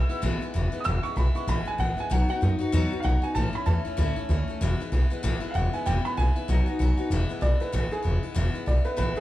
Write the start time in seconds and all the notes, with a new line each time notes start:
Already playing: E6
0.09 E3 G#3 B3 E4, muted upright bass stroke
0.22 A1 E2 B2 E3 G#3 B3 E4
0.41 E3 G#3 B3 E4, muted upright bass stroke
0.54 E1 E3 G#3 B3 E4
0.72 E3 G#3 B3 E4, muted upright bass stroke
0.80 E2 D#6
0.85 E1 B2 E3 G#3 B3 E4 E6
1.03 E3 G#3 B3 E4 C#6, muted upright bass stroke
1.16 B1 E3 G#3 B3 E4 B5
1.35 E3 G#3 B3 E4 C#6, muted upright bass stroke
1.47 A1 E2 B2 E3 G#3 B3 E4 B5
1.65 E3 G#3 B3 E4 G#5, muted upright bass stroke
1.78 A1 E3 G#3 B3 E4 F#5
1.97 E3 G#3 B3 E4 G#5, muted upright bass stroke
2.10 B1 B2 F#3 B3 D#4 F#4 F#5
2.29 B3 D#4 F#4 F#5, muted upright bass stroke
2.41 F#2 F#3 B3 D#4 F#4
2.59 B3 D#4 F#4, muted upright bass stroke
2.72 E2 B2 F#3 B3 D#4 F#4
2.91 B3 D#4 F#4, muted upright bass stroke
3.00 F#3 B3 D#4 F5
3.04 B1 F#4 F#5
3.22 B3 D#4 F#4 G#5, muted upright bass stroke
3.35 A1 A2 E3 A3 C#4 E4 A5
3.53 A3 C#4 E4 B5, muted upright bass stroke
3.66 E2 E3 A3 C#4 E4 A5
3.85 A3 C#4 E4, muted upright bass stroke
3.97 D2 A2 E3 A3 C#4 E4
4.16 A3 C#4 E4, muted upright bass stroke
4.29 D2 E3 A3 C#4 E4
4.48 A3 C#4 E4, muted upright bass stroke
4.61 E1 E2 B2 E3 G#3 B3 E4
4.80 E3 G#3 B3 E4, muted upright bass stroke
4.92 B1 E3 G#3 B3 E4
5.10 E3 G#3 B3 E4, muted upright bass stroke
5.23 A1 E2 B2 E3 G#3 B3 E4
5.40 E3 G#3 B3 E4, muted upright bass stroke
5.51 E3 F5
5.55 E1 G#3 B3 E4 F#5
5.73 E3 G#3 B3 E4 G#5
5.86 E1 E2 B2 E3 G#3 B3 E4 G5
6.05 E3 G#3 B3 E4 B5, muted upright bass stroke
6.17 B1 E3 G#3 B3 E4 G#5
6.36 E3 G#3 B3 E4, muted upright bass stroke
6.48 B1 B2 F#3 B3 D#4 F#4
6.66 B3 D#4 F#4
6.79 B1 F#3 B3 D#4 F#4
6.97 B3 D#4 F#4
7.10 E1 E2 B2 E3 G#3 B3 E4
7.29 E3 G#3 B3 E4, muted upright bass stroke
7.41 B1 E3 G#3 B3 E4 D5
7.60 E3 G#3 B3 E4 B4, muted upright bass stroke
7.72 A1 E2 B2 E3 G#3 B3 E4 B4
7.91 E3 G#3 B3 E4 G#4, muted upright bass stroke
8.03 E1 E3 G#3 B3 E4
8.23 E3 G#3 B3 E4
8.35 E1 E2 B2 E3 G#3 B3 E4
8.54 E3 G#3 B3 E4
8.66 B1 E3 G#3 B3 E4 D5
8.85 E3 G#3 B3 E4 B4, muted upright bass stroke
8.97 A1 E2 B2 E3 G#3 B3 E4 B4
9.15 G#3 B3 E4